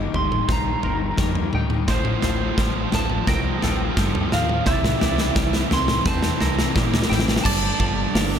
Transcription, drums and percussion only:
0.14 floor tom
0.32 mid tom
0.49 kick, snare, floor tom
0.83 floor tom
1.17 kick, snare
1.35 floor tom
1.53 mid tom
1.70 mid tom
1.88 kick, snare, floor tom
2.05 mid tom
2.22 snare, floor tom
2.58 kick, snare
2.92 snare, floor tom
3.10 mid tom
3.27 kick, snare, floor tom
3.62 snare, floor tom
3.97 kick, snare
4.15 floor tom
4.32 snare, mid tom
4.49 mid tom
4.66 kick, snare, floor tom
4.84 snare, mid tom
5.01 snare, floor tom
5.18 snare
5.36 kick, snare
5.53 snare
5.71 snare, floor tom
5.88 snare, mid tom
6.06 kick, snare, floor tom
6.23 snare
6.41 snare, floor tom
6.59 snare
6.76 kick, snare
6.94 snare, floor tom
7.02 snare
7.12 snare, mid tom
7.19 snare
7.28 snare, mid tom
7.36 snare
7.45 kick, crash
7.80 kick
8.15 snare, open hi-hat
8.33 snare

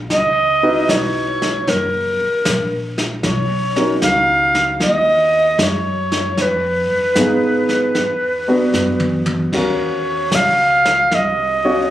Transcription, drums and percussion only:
0.10 brush sweep, snare
0.89 snare, hi-hat pedal
1.42 snare
1.67 brush sweep, snare
2.45 snare, hi-hat pedal
2.98 snare
3.23 brush sweep, snare
3.76 snare
4.02 snare, hi-hat pedal
4.55 snare
4.80 brush sweep, snare
5.59 snare, hi-hat pedal
6.12 snare
6.37 brush sweep, snare
7.16 snare, hi-hat pedal
7.69 snare
7.95 brush sweep, snare
8.74 snare, hi-hat pedal
9.00 high tom
9.26 high tom
9.53 brush sweep, kick, snare, ride
10.32 snare, hi-hat pedal
10.85 snare
11.11 brush sweep, snare

